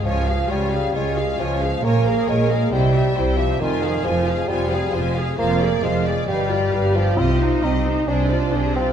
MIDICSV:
0, 0, Header, 1, 7, 480
1, 0, Start_track
1, 0, Tempo, 446429
1, 55, Time_signature, 4, 2, 24, 8
1, 9598, End_track
2, 0, Start_track
2, 0, Title_t, "Violin section"
2, 0, Program_c, 0, 48
2, 68, Note_on_c, 0, 80, 43
2, 285, Note_off_c, 0, 80, 0
2, 306, Note_on_c, 0, 77, 37
2, 539, Note_off_c, 0, 77, 0
2, 546, Note_on_c, 0, 80, 37
2, 775, Note_on_c, 0, 77, 39
2, 778, Note_off_c, 0, 80, 0
2, 1014, Note_off_c, 0, 77, 0
2, 1018, Note_on_c, 0, 80, 33
2, 1240, Note_off_c, 0, 80, 0
2, 1261, Note_on_c, 0, 77, 38
2, 1499, Note_off_c, 0, 77, 0
2, 1506, Note_on_c, 0, 80, 39
2, 1742, Note_off_c, 0, 80, 0
2, 1748, Note_on_c, 0, 77, 38
2, 1983, Note_off_c, 0, 77, 0
2, 1994, Note_on_c, 0, 80, 47
2, 2210, Note_off_c, 0, 80, 0
2, 2227, Note_on_c, 0, 77, 40
2, 2463, Note_off_c, 0, 77, 0
2, 2464, Note_on_c, 0, 80, 39
2, 2696, Note_on_c, 0, 77, 40
2, 2701, Note_off_c, 0, 80, 0
2, 2930, Note_on_c, 0, 79, 37
2, 2935, Note_off_c, 0, 77, 0
2, 3154, Note_off_c, 0, 79, 0
2, 3165, Note_on_c, 0, 76, 38
2, 3407, Note_off_c, 0, 76, 0
2, 3410, Note_on_c, 0, 79, 40
2, 3641, Note_on_c, 0, 76, 38
2, 3648, Note_off_c, 0, 79, 0
2, 3882, Note_off_c, 0, 76, 0
2, 3886, Note_on_c, 0, 80, 49
2, 4106, Note_off_c, 0, 80, 0
2, 4120, Note_on_c, 0, 77, 44
2, 4358, Note_off_c, 0, 77, 0
2, 4360, Note_on_c, 0, 80, 44
2, 4592, Note_on_c, 0, 77, 42
2, 4598, Note_off_c, 0, 80, 0
2, 4835, Note_off_c, 0, 77, 0
2, 4835, Note_on_c, 0, 80, 45
2, 5061, Note_off_c, 0, 80, 0
2, 5082, Note_on_c, 0, 77, 45
2, 5313, Note_on_c, 0, 80, 44
2, 5321, Note_off_c, 0, 77, 0
2, 5549, Note_on_c, 0, 77, 42
2, 5557, Note_off_c, 0, 80, 0
2, 5773, Note_off_c, 0, 77, 0
2, 5786, Note_on_c, 0, 77, 52
2, 6014, Note_off_c, 0, 77, 0
2, 6028, Note_on_c, 0, 74, 44
2, 6271, Note_off_c, 0, 74, 0
2, 6277, Note_on_c, 0, 77, 45
2, 6501, Note_on_c, 0, 74, 43
2, 6516, Note_off_c, 0, 77, 0
2, 6749, Note_off_c, 0, 74, 0
2, 6756, Note_on_c, 0, 77, 41
2, 6980, Note_off_c, 0, 77, 0
2, 6996, Note_on_c, 0, 74, 43
2, 7234, Note_on_c, 0, 77, 42
2, 7237, Note_off_c, 0, 74, 0
2, 7478, Note_off_c, 0, 77, 0
2, 7478, Note_on_c, 0, 74, 44
2, 7721, Note_off_c, 0, 74, 0
2, 7729, Note_on_c, 0, 75, 44
2, 7952, Note_off_c, 0, 75, 0
2, 7957, Note_on_c, 0, 72, 44
2, 8202, Note_off_c, 0, 72, 0
2, 8207, Note_on_c, 0, 75, 41
2, 8443, Note_on_c, 0, 72, 45
2, 8448, Note_off_c, 0, 75, 0
2, 8670, Note_off_c, 0, 72, 0
2, 8683, Note_on_c, 0, 72, 39
2, 8912, Note_off_c, 0, 72, 0
2, 8922, Note_on_c, 0, 74, 40
2, 9164, Note_on_c, 0, 72, 42
2, 9169, Note_off_c, 0, 74, 0
2, 9399, Note_on_c, 0, 74, 38
2, 9410, Note_off_c, 0, 72, 0
2, 9598, Note_off_c, 0, 74, 0
2, 9598, End_track
3, 0, Start_track
3, 0, Title_t, "Violin section"
3, 0, Program_c, 1, 48
3, 50, Note_on_c, 1, 73, 40
3, 276, Note_off_c, 1, 73, 0
3, 282, Note_on_c, 1, 77, 34
3, 527, Note_off_c, 1, 77, 0
3, 538, Note_on_c, 1, 73, 36
3, 767, Note_on_c, 1, 77, 34
3, 774, Note_off_c, 1, 73, 0
3, 1010, Note_off_c, 1, 77, 0
3, 1017, Note_on_c, 1, 73, 36
3, 1240, Note_off_c, 1, 73, 0
3, 1256, Note_on_c, 1, 77, 36
3, 1492, Note_on_c, 1, 73, 38
3, 1496, Note_off_c, 1, 77, 0
3, 1735, Note_off_c, 1, 73, 0
3, 1735, Note_on_c, 1, 77, 37
3, 1977, Note_off_c, 1, 77, 0
3, 1979, Note_on_c, 1, 73, 39
3, 2197, Note_on_c, 1, 70, 37
3, 2202, Note_off_c, 1, 73, 0
3, 2448, Note_off_c, 1, 70, 0
3, 2448, Note_on_c, 1, 73, 37
3, 2690, Note_on_c, 1, 70, 37
3, 2693, Note_off_c, 1, 73, 0
3, 2922, Note_on_c, 1, 72, 44
3, 2932, Note_off_c, 1, 70, 0
3, 3149, Note_off_c, 1, 72, 0
3, 3156, Note_on_c, 1, 76, 40
3, 3401, Note_on_c, 1, 72, 46
3, 3403, Note_off_c, 1, 76, 0
3, 3644, Note_off_c, 1, 72, 0
3, 3644, Note_on_c, 1, 76, 40
3, 3884, Note_off_c, 1, 76, 0
3, 3884, Note_on_c, 1, 72, 45
3, 4105, Note_off_c, 1, 72, 0
3, 4126, Note_on_c, 1, 68, 40
3, 4350, Note_on_c, 1, 72, 41
3, 4361, Note_off_c, 1, 68, 0
3, 4593, Note_off_c, 1, 72, 0
3, 4598, Note_on_c, 1, 68, 41
3, 4836, Note_on_c, 1, 72, 48
3, 4838, Note_off_c, 1, 68, 0
3, 5061, Note_off_c, 1, 72, 0
3, 5068, Note_on_c, 1, 68, 45
3, 5311, Note_on_c, 1, 72, 44
3, 5314, Note_off_c, 1, 68, 0
3, 5549, Note_on_c, 1, 68, 40
3, 5555, Note_off_c, 1, 72, 0
3, 5785, Note_on_c, 1, 72, 45
3, 5794, Note_off_c, 1, 68, 0
3, 6014, Note_off_c, 1, 72, 0
3, 6038, Note_on_c, 1, 74, 42
3, 6270, Note_on_c, 1, 72, 42
3, 6276, Note_off_c, 1, 74, 0
3, 6511, Note_on_c, 1, 74, 41
3, 6512, Note_off_c, 1, 72, 0
3, 6747, Note_on_c, 1, 71, 43
3, 6754, Note_off_c, 1, 74, 0
3, 6975, Note_off_c, 1, 71, 0
3, 6999, Note_on_c, 1, 67, 40
3, 7237, Note_on_c, 1, 71, 41
3, 7239, Note_off_c, 1, 67, 0
3, 7479, Note_off_c, 1, 71, 0
3, 7480, Note_on_c, 1, 67, 44
3, 7709, Note_off_c, 1, 67, 0
3, 7722, Note_on_c, 1, 67, 47
3, 7948, Note_off_c, 1, 67, 0
3, 7971, Note_on_c, 1, 63, 42
3, 8206, Note_on_c, 1, 67, 39
3, 8209, Note_off_c, 1, 63, 0
3, 8448, Note_off_c, 1, 67, 0
3, 8451, Note_on_c, 1, 63, 43
3, 8691, Note_on_c, 1, 68, 46
3, 8692, Note_off_c, 1, 63, 0
3, 8916, Note_off_c, 1, 68, 0
3, 8927, Note_on_c, 1, 72, 42
3, 9171, Note_off_c, 1, 72, 0
3, 9176, Note_on_c, 1, 68, 41
3, 9408, Note_on_c, 1, 72, 35
3, 9416, Note_off_c, 1, 68, 0
3, 9598, Note_off_c, 1, 72, 0
3, 9598, End_track
4, 0, Start_track
4, 0, Title_t, "Viola section"
4, 0, Program_c, 2, 48
4, 66, Note_on_c, 2, 65, 35
4, 284, Note_off_c, 2, 65, 0
4, 308, Note_on_c, 2, 68, 34
4, 528, Note_on_c, 2, 65, 38
4, 540, Note_off_c, 2, 68, 0
4, 768, Note_on_c, 2, 68, 34
4, 770, Note_off_c, 2, 65, 0
4, 1007, Note_on_c, 2, 65, 38
4, 1010, Note_off_c, 2, 68, 0
4, 1234, Note_off_c, 2, 65, 0
4, 1246, Note_on_c, 2, 68, 35
4, 1487, Note_on_c, 2, 65, 38
4, 1491, Note_off_c, 2, 68, 0
4, 1729, Note_on_c, 2, 68, 39
4, 1732, Note_off_c, 2, 65, 0
4, 1971, Note_on_c, 2, 70, 38
4, 1974, Note_off_c, 2, 68, 0
4, 2198, Note_off_c, 2, 70, 0
4, 2215, Note_on_c, 2, 68, 41
4, 2446, Note_on_c, 2, 70, 42
4, 2457, Note_off_c, 2, 68, 0
4, 2679, Note_on_c, 2, 68, 38
4, 2692, Note_off_c, 2, 70, 0
4, 2926, Note_off_c, 2, 68, 0
4, 2928, Note_on_c, 2, 64, 49
4, 3152, Note_off_c, 2, 64, 0
4, 3156, Note_on_c, 2, 67, 42
4, 3403, Note_off_c, 2, 67, 0
4, 3409, Note_on_c, 2, 64, 42
4, 3648, Note_off_c, 2, 64, 0
4, 3652, Note_on_c, 2, 67, 44
4, 3884, Note_on_c, 2, 65, 46
4, 3888, Note_off_c, 2, 67, 0
4, 4105, Note_off_c, 2, 65, 0
4, 4116, Note_on_c, 2, 68, 43
4, 4355, Note_on_c, 2, 65, 47
4, 4356, Note_off_c, 2, 68, 0
4, 4579, Note_on_c, 2, 68, 40
4, 4595, Note_off_c, 2, 65, 0
4, 4822, Note_on_c, 2, 65, 48
4, 4828, Note_off_c, 2, 68, 0
4, 5054, Note_off_c, 2, 65, 0
4, 5065, Note_on_c, 2, 68, 42
4, 5313, Note_off_c, 2, 68, 0
4, 5319, Note_on_c, 2, 65, 41
4, 5552, Note_on_c, 2, 68, 44
4, 5559, Note_off_c, 2, 65, 0
4, 5791, Note_on_c, 2, 65, 44
4, 5795, Note_off_c, 2, 68, 0
4, 6017, Note_off_c, 2, 65, 0
4, 6035, Note_on_c, 2, 68, 43
4, 6275, Note_off_c, 2, 68, 0
4, 6281, Note_on_c, 2, 65, 42
4, 6513, Note_on_c, 2, 68, 43
4, 6518, Note_off_c, 2, 65, 0
4, 6750, Note_on_c, 2, 67, 44
4, 6755, Note_off_c, 2, 68, 0
4, 6977, Note_off_c, 2, 67, 0
4, 6978, Note_on_c, 2, 65, 40
4, 7218, Note_on_c, 2, 67, 43
4, 7228, Note_off_c, 2, 65, 0
4, 7456, Note_on_c, 2, 65, 44
4, 7470, Note_off_c, 2, 67, 0
4, 7706, Note_on_c, 2, 60, 43
4, 7710, Note_off_c, 2, 65, 0
4, 7939, Note_off_c, 2, 60, 0
4, 7960, Note_on_c, 2, 63, 42
4, 8204, Note_off_c, 2, 63, 0
4, 8206, Note_on_c, 2, 60, 40
4, 8448, Note_off_c, 2, 60, 0
4, 8452, Note_on_c, 2, 63, 42
4, 8690, Note_on_c, 2, 62, 43
4, 8693, Note_off_c, 2, 63, 0
4, 8916, Note_off_c, 2, 62, 0
4, 8934, Note_on_c, 2, 65, 43
4, 9160, Note_on_c, 2, 62, 40
4, 9175, Note_off_c, 2, 65, 0
4, 9408, Note_off_c, 2, 62, 0
4, 9413, Note_on_c, 2, 65, 39
4, 9598, Note_off_c, 2, 65, 0
4, 9598, End_track
5, 0, Start_track
5, 0, Title_t, "Bassoon"
5, 0, Program_c, 3, 70
5, 60, Note_on_c, 3, 53, 55
5, 527, Note_off_c, 3, 53, 0
5, 546, Note_on_c, 3, 55, 59
5, 1023, Note_on_c, 3, 56, 60
5, 1039, Note_off_c, 3, 55, 0
5, 1501, Note_off_c, 3, 56, 0
5, 1505, Note_on_c, 3, 53, 53
5, 1973, Note_on_c, 3, 58, 63
5, 1989, Note_off_c, 3, 53, 0
5, 2457, Note_off_c, 3, 58, 0
5, 2461, Note_on_c, 3, 56, 70
5, 2925, Note_on_c, 3, 55, 61
5, 2941, Note_off_c, 3, 56, 0
5, 3634, Note_on_c, 3, 53, 65
5, 3650, Note_off_c, 3, 55, 0
5, 3872, Note_on_c, 3, 51, 69
5, 3888, Note_off_c, 3, 53, 0
5, 4336, Note_off_c, 3, 51, 0
5, 4343, Note_on_c, 3, 53, 61
5, 4826, Note_on_c, 3, 55, 62
5, 4842, Note_off_c, 3, 53, 0
5, 5314, Note_off_c, 3, 55, 0
5, 5791, Note_on_c, 3, 58, 69
5, 6274, Note_on_c, 3, 56, 59
5, 6290, Note_off_c, 3, 58, 0
5, 6748, Note_off_c, 3, 56, 0
5, 6754, Note_on_c, 3, 55, 68
5, 7486, Note_on_c, 3, 53, 67
5, 7502, Note_off_c, 3, 55, 0
5, 7720, Note_on_c, 3, 65, 78
5, 7736, Note_off_c, 3, 53, 0
5, 8207, Note_on_c, 3, 63, 63
5, 8223, Note_off_c, 3, 65, 0
5, 8690, Note_on_c, 3, 62, 69
5, 8706, Note_off_c, 3, 63, 0
5, 9408, Note_off_c, 3, 62, 0
5, 9414, Note_on_c, 3, 60, 65
5, 9598, Note_off_c, 3, 60, 0
5, 9598, End_track
6, 0, Start_track
6, 0, Title_t, "Cello section"
6, 0, Program_c, 4, 48
6, 58, Note_on_c, 4, 37, 47
6, 479, Note_off_c, 4, 37, 0
6, 526, Note_on_c, 4, 37, 43
6, 952, Note_off_c, 4, 37, 0
6, 1012, Note_on_c, 4, 37, 44
6, 1438, Note_off_c, 4, 37, 0
6, 1494, Note_on_c, 4, 37, 43
6, 1920, Note_off_c, 4, 37, 0
6, 1970, Note_on_c, 4, 46, 48
6, 2398, Note_off_c, 4, 46, 0
6, 2451, Note_on_c, 4, 46, 51
6, 2876, Note_off_c, 4, 46, 0
6, 2923, Note_on_c, 4, 48, 49
6, 3349, Note_off_c, 4, 48, 0
6, 3412, Note_on_c, 4, 48, 47
6, 3831, Note_off_c, 4, 48, 0
6, 3885, Note_on_c, 4, 41, 58
6, 4303, Note_off_c, 4, 41, 0
6, 4356, Note_on_c, 4, 41, 53
6, 4779, Note_off_c, 4, 41, 0
6, 4838, Note_on_c, 4, 41, 57
6, 5263, Note_off_c, 4, 41, 0
6, 5324, Note_on_c, 4, 41, 49
6, 5745, Note_off_c, 4, 41, 0
6, 5801, Note_on_c, 4, 41, 65
6, 6221, Note_off_c, 4, 41, 0
6, 6276, Note_on_c, 4, 41, 51
6, 6699, Note_off_c, 4, 41, 0
6, 6758, Note_on_c, 4, 43, 54
6, 7182, Note_off_c, 4, 43, 0
6, 7238, Note_on_c, 4, 43, 45
6, 7665, Note_off_c, 4, 43, 0
6, 7722, Note_on_c, 4, 48, 57
6, 8149, Note_off_c, 4, 48, 0
6, 8209, Note_on_c, 4, 48, 52
6, 8635, Note_off_c, 4, 48, 0
6, 8688, Note_on_c, 4, 48, 51
6, 9116, Note_off_c, 4, 48, 0
6, 9171, Note_on_c, 4, 48, 51
6, 9598, Note_off_c, 4, 48, 0
6, 9598, End_track
7, 0, Start_track
7, 0, Title_t, "Double bass section"
7, 0, Program_c, 5, 48
7, 55, Note_on_c, 5, 37, 42
7, 478, Note_off_c, 5, 37, 0
7, 528, Note_on_c, 5, 37, 44
7, 953, Note_off_c, 5, 37, 0
7, 1005, Note_on_c, 5, 37, 47
7, 1435, Note_off_c, 5, 37, 0
7, 1488, Note_on_c, 5, 37, 44
7, 1916, Note_off_c, 5, 37, 0
7, 1967, Note_on_c, 5, 34, 52
7, 2396, Note_off_c, 5, 34, 0
7, 2454, Note_on_c, 5, 34, 50
7, 2877, Note_off_c, 5, 34, 0
7, 2929, Note_on_c, 5, 36, 50
7, 3352, Note_off_c, 5, 36, 0
7, 3405, Note_on_c, 5, 36, 47
7, 3827, Note_off_c, 5, 36, 0
7, 3877, Note_on_c, 5, 29, 51
7, 4299, Note_off_c, 5, 29, 0
7, 4356, Note_on_c, 5, 29, 52
7, 4779, Note_off_c, 5, 29, 0
7, 4833, Note_on_c, 5, 29, 53
7, 5261, Note_off_c, 5, 29, 0
7, 5311, Note_on_c, 5, 29, 51
7, 5738, Note_off_c, 5, 29, 0
7, 5802, Note_on_c, 5, 29, 53
7, 6221, Note_off_c, 5, 29, 0
7, 6272, Note_on_c, 5, 29, 55
7, 6697, Note_off_c, 5, 29, 0
7, 6760, Note_on_c, 5, 31, 49
7, 7183, Note_off_c, 5, 31, 0
7, 7245, Note_on_c, 5, 31, 50
7, 7669, Note_off_c, 5, 31, 0
7, 7719, Note_on_c, 5, 36, 48
7, 8148, Note_off_c, 5, 36, 0
7, 8207, Note_on_c, 5, 36, 53
7, 8634, Note_off_c, 5, 36, 0
7, 8689, Note_on_c, 5, 36, 50
7, 9117, Note_off_c, 5, 36, 0
7, 9172, Note_on_c, 5, 36, 47
7, 9598, Note_off_c, 5, 36, 0
7, 9598, End_track
0, 0, End_of_file